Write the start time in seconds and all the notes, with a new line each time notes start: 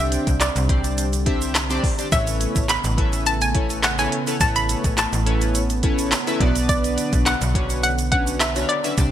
Already playing: C2 D3 G3 C4 D4 G4 C5 D5
0.00 E5
0.12 closed hi-hat, shaker
0.27 C2, kick, closed hi-hat, shaker
0.40 D5, snare, clap, closed hi-hat, shaker
0.56 C2, closed hi-hat, shaker
0.69 C4 D4 G4 C5 D5, kick, closed hi-hat
0.84 closed hi-hat, shaker
0.98 closed hi-hat, shaker
1.13 closed hi-hat, shaker
1.26 C4 D4 G4 C5 E5, kick, closed hi-hat
1.41 closed hi-hat, shaker
1.55 snare, clap, closed hi-hat, shaker
1.70 C4 D4 G4 C5 D5, closed hi-hat, shaker
1.84 kick, open hi-hat
1.98 C4 D4 G4 C5 D5, closed hi-hat, shaker
2.12 A1 C#3 A3 B3 C#4 E4 A4 B4 C#5 E5, kick, closed hi-hat, shaker
2.27 closed hi-hat, shaker
2.40 closed hi-hat, shaker
2.56 A1, kick, closed hi-hat, shaker
2.69 B5, snare, clap, closed hi-hat, shaker
2.84 A1, closed hi-hat, shaker
2.97 C#4 E4 A4 B4 E5, kick, closed hi-hat
3.13 closed hi-hat, shaker
3.26 A5, closed hi-hat, shaker
3.41 G#5, closed hi-hat, shaker
3.54 C#4 E4 A4 B4 C#5, kick, closed hi-hat
3.70 closed hi-hat, shaker
3.83 F#5, snare, clap, closed hi-hat, shaker
3.98 C#4 E4 A4 B4 C#5 G#5, closed hi-hat, shaker
4.12 closed hi-hat
4.27 C#4 E4 A4 B4 C#5, closed hi-hat, shaker
4.40 A1 A3 C#4 E4 A4 B4 C#5 A5, kick, closed hi-hat, shaker
4.56 B5, closed hi-hat, shaker
4.69 closed hi-hat, shaker
4.84 A1, kick, closed hi-hat, shaker
4.97 A5, snare, clap, closed hi-hat, shaker
5.13 A1, closed hi-hat, shaker
5.26 C#4 E4 A4 B4 C#5, closed hi-hat
5.41 closed hi-hat, shaker
5.55 closed hi-hat, shaker
5.70 closed hi-hat, shaker
5.83 C#4 E4 A4 B4 C#5, kick, closed hi-hat
5.98 closed hi-hat, shaker
6.11 snare, clap, closed hi-hat, shaker
6.27 C#4 E4 A4 B4 E5, closed hi-hat, shaker
6.40 B1 D3 B3 D4 F#4 B4 D5, kick, closed hi-hat
6.56 closed hi-hat, shaker
6.69 D5, kick, closed hi-hat, shaker
6.84 closed hi-hat, shaker
6.98 closed hi-hat, shaker
7.13 B1, kick, closed hi-hat, shaker
7.26 F#5, snare, clap, closed hi-hat, shaker
7.41 B1, closed hi-hat, shaker
7.55 C#4 D4 F#4 B4 C#5, kick, closed hi-hat
7.70 closed hi-hat, shaker
7.83 F#5, closed hi-hat, shaker
7.98 closed hi-hat, shaker
8.12 C#4 D4 F#4 B4 C#5 F#5, kick, closed hi-hat
8.27 closed hi-hat, shaker
8.40 E5, snare, clap, closed hi-hat, shaker
8.56 C#4 D4 F#4 B4 C#5, closed hi-hat, shaker
8.69 D5, closed hi-hat
8.84 C#4 D4 F#4 B4 E5, closed hi-hat, shaker
8.97 C2 D3 G3 C4 D4 G4 C5 D5, kick, closed hi-hat, shaker